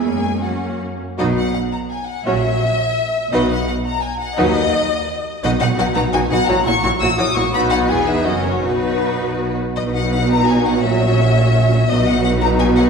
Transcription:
<<
  \new Staff \with { instrumentName = "Violin section" } { \time 3/4 \key b \major \tempo 4 = 170 gis''4 fis''4 r4 | dis''8 fis''8 fis''8 ais''8 gis''8 fis''8 | e''2. | dis''8 fis''8 fis''8 ais''8 gis''8 fis''8 |
dis''2. | dis''8 fis''8 fis''8 ais''8 gis''8 fis''8 | ais''8 cis'''8 cis'''8 e'''8 dis'''8 cis'''8 | b''8 fis''8 gis''8 e''8 dis''8 cis''8 |
b'2~ b'8 r8 | dis''8 fis''8 fis''8 ais''8 gis''8 fis''8 | e''2. | dis''8 fis''8 fis''8 ais''8 gis''8 fis''8 | }
  \new Staff \with { instrumentName = "Violin section" } { \time 3/4 \key b \major << { gis'4 fis'4 r4 | b'8 r2 r8 | cis''8 r2 r8 | b'8 r2 r8 |
b'8 r2 r8 | b'8 b'8 b'8 b'8 b'8 b'8 | cis''8 cis''8 cis''8 cis''8 cis''8 cis''8 | b'4 b'4 ais'4 |
b'2~ b'8 r8 | b'2. | cis''2. | b'2. | } \\ { r2. | fis'8 r2 r8 | fis'8 r2 r8 | fis'8 r2 r8 |
fis'8 r2 r8 | fis'8 fis'8 fis'8 fis'8 fis'8 fis'8 | fis'8 fis'8 fis'8 fis'8 fis'8 fis'8 | fis'4 gis'4 fis'4 |
fis'2~ fis'8 r8 | fis'2.~ | fis'2. | fis'2. | } >> }
  \new Staff \with { instrumentName = "Viola section" } { \time 3/4 \key b \major << { cis'4 cis'4. r8 | dis'8 r2 r8 | cis'8 r2 r8 | dis'8 r2 r8 |
dis'8 r2 r8 | dis'8 dis'8 dis'8 dis'8 dis'8 dis'8 | e'8 e'8 e'8 e'8 e'8 e'8 | dis'4 e'8 dis'8 cis'4 |
dis'2~ dis'8 r8 | dis'2. | cis'2. | dis'2. | } \\ { ais4 ais4. r8 | fis8 r2 r8 | fis8 r2 r8 | fis8 r2 r8 |
fis8 r2 r8 | fis8 fis8 fis8 fis8 fis8 fis8 | fis8 fis8 fis8 fis8 fis8 fis8 | b4 b4 fis4 |
fis2~ fis8 r8 | fis2.~ | fis2. | fis2. | } >> }
  \new Staff \with { instrumentName = "Cello section" } { \clef bass \time 3/4 \key b \major gis4 fis4 r4 | b,4 r2 | ais,4 r2 | b,4 r2 |
dis4 r2 | b,8 b,8 b,8 b,8 b,8 b,8 | ais,8 ais,8 ais,8 ais,8 ais,8 ais,8 | b,4 e,4 fis,4 |
b,2~ b,8 r8 | b,2. | ais,2. | b,2. | }
  \new Staff \with { instrumentName = "Double bass section" } { \clef bass \time 3/4 \key b \major fis,2~ fis,8 r8 | b,,4 r2 | ais,,4 r2 | b,,4 r2 |
dis,4 r2 | b,,8 b,,8 b,,8 b,,8 b,,8 b,,8 | ais,,8 ais,,8 ais,,8 ais,,8 ais,,8 ais,,8 | b,,4 e,,4 fis,,4 |
b,,2~ b,,8 r8 | b,,2. | ais,,2. | b,,2. | }
>>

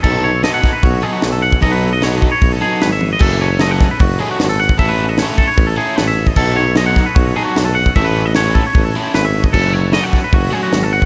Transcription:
<<
  \new Staff \with { instrumentName = "Clean electric guitar" } { \time 4/4 \key b \mixolydian \tempo 4 = 152 a'8 cis''8 dis''16 fis''8 b'16 fis'8 gis'16 fis'8 a'16 fis''8 | dis''16 b'8 dis''16 cis''8 a'16 cis''8 a'16 gis'8 b'16 e''8 dis''16 | a'8 cis''8 dis''16 fis''8 b'16 fis'8 gis'16 fis'8 a'16 fis''8 | e''16 b'8 dis''16 cis''8 a'16 cis''8 a'16 gis'8 b'16 e''8 dis''16 |
a'8 cis''8 dis''16 fis''8 b'16 fis'8 gis'16 fis'8 a'16 fis''8 | e''16 b'8 dis''16 cis''8 a'16 cis''8 a'16 gis'8 b'16 e''8 dis''16 | a'8 cis''8 dis''16 fis''8 b'16 fis'8 gis'16 fis'8 a'16 fis''8 | }
  \new Staff \with { instrumentName = "Overdriven electric guitar" } { \time 4/4 \key b \mixolydian <fis b dis' a'>8 r8 <fis b dis' a'>8 r4 <fis b dis' a'>8 r4 | <fis b dis' a'>8 r8 <fis b dis' a'>8 r4 <fis b dis' a'>8 r4 | <fis a cis' a'>8 r8 <fis a cis' a'>8 r4 <fis a cis' a'>8 r4 | <a cis' e' a'>8 r8 <a cis' e' a'>8 r4 <a cis' e' a'>8 r4 |
<fis b dis' a'>8 r8 <fis b dis' a'>8 r4 <fis b dis' a'>8 r4 | <a cis' e' a'>8 r8 <a cis' e' a'>8 r4 <a cis' e' a'>8 r4 | <fis a cis' fis'>8 r8 <fis a cis' fis'>8 r4 <fis a cis' fis'>8 r4 | }
  \new Staff \with { instrumentName = "Tuba" } { \clef bass \time 4/4 \key b \mixolydian b,,4. r8 b,,8 r8 b,,4 | b,,2 b,,8 r8 gis,,4 | fis,,2 fis,,8 r8 gis,,4 | a,,4. r8 a,,8 r8 a,,4 |
b,,2 b,,8 r8 b,,4 | a,,2 a,,8 r8 gis,,4 | fis,,4. r8 fis,,8 r8 gis,,4 | }
  \new DrumStaff \with { instrumentName = "Drums" } \drummode { \time 4/4 <cymc bd>4 <hho sn>8 <bd sn>8 <hho bd>4 <hho sn>16 sn8 bd16 | <hho bd>4 <hho sn>8 bd8 <hho bd>4 <hho sn>16 sn16 tommh8 | <cymc bd>4 <hho sn>8 <bd sn>8 <hho bd>4 <hho sn>16 sn8 bd16 | <hho bd>4 <hho sn>8 bd8 <hho bd>4 <hho sn>16 sn8 bd16 |
<cymc bd>4 <hho sn>8 <bd sn>8 <hho bd>4 <hho sn>16 sn8 bd16 | <hho bd>4 <hho sn>8 bd8 <hho bd>4 <hho sn>16 sn8 bd16 | <cymc bd>4 <hho sn>8 <bd sn>8 <hho bd>4 <hho sn>16 sn8 bd16 | }
>>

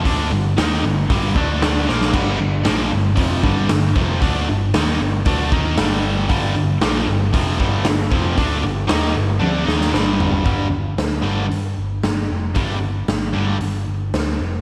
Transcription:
<<
  \new Staff \with { instrumentName = "Distorted electric guitar" } { \clef bass \time 4/4 \key g \minor \tempo 4 = 115 <d a d'>8 <g, d>8 <ees bes ees'>8 <g, d>8 <g, d g>8 <d a d'>4 <bes, f bes>8 | <g, d g>8 <g, d>8 <bes, f bes>8 <g, d>8 <f, c f>8 <g, d g>8 <g, d>8 <f, c f>8 | <d a d'>8 <g, d>8 <ees bes ees'>8 <g, d>8 <d a d'>8 <ees bes ees'>8 <g, d g>4 | <g, d g>8 <g, d>8 <bes, f bes>8 <g, d>8 <f, c f>8 <g, d g>8 <g, d>8 <f, c f>8 |
<d a d'>8 <g, d>8 <ees bes ees'>8 <g, d>8 <d a d'>8 <ees bes ees'>8 <g, d g>4 | <g, d g>8 r4 <g, d g>8 r2 | <g, d g>8 r4 <g, d g>8 r2 | }
  \new Staff \with { instrumentName = "Picked electric bass" } { \clef bass \time 4/4 \key g \minor d,8 g,,8 ees,8 g,,8 g,,8 d,4 bes,,8 | g,,8 g,,8 bes,,8 g,,8 f,,8 g,,8 g,,8 f,,8 | d,8 g,,8 ees,8 g,,8 d,8 ees,8 g,,4 | g,,8 g,,8 bes,,8 g,,8 f,,8 g,,8 g,,8 f,,8 |
d,8 g,,8 ees,8 g,,8 d,8 ees,8 g,,4 | g,,8 g,,8 d,8 g,,8 g,8 g,,8 g,,8 f,,8 | g,,4 g,,8 g,,8 g,,8 g,,8 d,8 f,,8 | }
  \new DrumStaff \with { instrumentName = "Drums" } \drummode { \time 4/4 <hho bd>4 <hho sn>4 <hho bd>8 bd8 <hho sn>8 sn16 sn16 | <cymc bd>4 <hho sn>4 <hho bd>8 bd8 <hho sn>8 bd8 | <hho bd>4 <hho sn>4 <hho bd>8 bd8 <hho sn>4 | <hho bd>4 <hho sn>4 <hho bd>8 bd8 <hho sn>8 bd8 |
<hho bd>4 <hho sn>4 tommh8 sn16 sn16 sn8 tomfh16 tomfh16 | <hho bd>4 <hho sn>4 hho4 <hho sn>4 | <hho bd>4 <hho sn>4 hho4 <hho sn>4 | }
>>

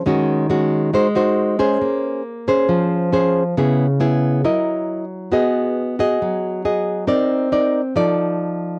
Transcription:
\new Staff \with { instrumentName = "Nylon-string guitar" } { \time 4/4 \key aes \mixolydian \tempo 4 = 137 << { <aes des' ges'>4 <aes des' ges'>4 <ees' ges' c''>8 <ees' ges' c''>4 <des' aes' c''>8~ | \key bes \minor <des' aes' c''>4 r8 <des' aes' c''>4. <des' aes' c''>8 r8 | <ces' fes' aes'>8 r8 <ces' fes' aes'>4 <e' bes' ees''>4. r8 | <fis' gis' dis''>4. <fis' gis' dis''>4. <fis' gis' dis''>4 |
<ees' bes' d''>4 <ees' bes' d''>8 r8 <ees' a' d''>2 | } \\ { ees2 aes2 | bes2 f2 | des2 ges2 | b2 fis2 |
c'2 f2 | } >> }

